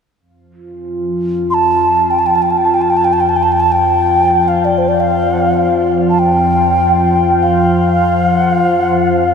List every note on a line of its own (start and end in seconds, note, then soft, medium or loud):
0.20 9.34 F2 medium
0.20 9.34 F3 medium
0.51 9.34 F4 soft
1.50 2.12 A5 medium
1.50 1.55 C6 medium
2.11 2.20 G5 medium
2.19 2.28 A5 medium
2.26 2.37 G5 medium
2.35 2.44 A5 medium
2.42 2.52 G5 medium
2.51 2.59 A5 medium
2.57 2.67 G5 medium
2.65 2.76 A5 medium
2.74 2.83 G5 medium
2.81 2.92 A5 medium
2.90 2.98 G5 medium
2.97 3.06 A5 medium
3.05 3.14 G5 medium
3.13 3.22 A5 medium
3.20 3.31 G5 medium
3.29 3.38 A5 medium
3.36 3.44 G5 medium
3.43 3.54 A5 medium
3.52 3.62 G5 medium
3.60 3.74 A5 medium
3.72 4.50 G5 medium
4.48 4.66 F5 medium
4.65 4.80 D5 medium
4.78 4.90 C5 medium
4.88 5.02 D5 medium
5.00 5.91 F5 medium
6.10 6.21 A5 medium
6.19 7.44 G5 medium
7.43 8.33 F5 medium
8.33 8.58 F#5 medium
8.58 8.85 F5 medium
8.85 9.09 F#5 medium
9.09 9.34 F5 medium